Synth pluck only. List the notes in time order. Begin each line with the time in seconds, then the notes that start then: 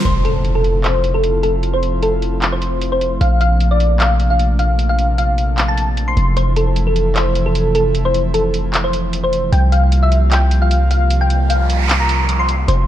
0.05 C5
0.25 A4
0.55 A4
0.84 C5
1.14 A4
1.43 A4
1.74 C5
2.03 A4
2.53 C5
2.92 C5
3.21 F5
3.41 F5
3.71 D5
4.00 F5
4.30 F5
4.59 F5
4.89 F5
5.18 F5
5.68 A5
6.08 C6
6.37 C5
6.56 A4
6.87 A4
7.16 C5
7.46 A4
7.75 A4
8.05 C5
8.34 A4
8.84 C5
9.24 C5
9.52 G5
9.72 F5
10.03 E5
10.31 G5
10.62 F5
10.91 F5
11.21 G5
11.50 F5
12.00 A#5
12.39 C6
12.68 C5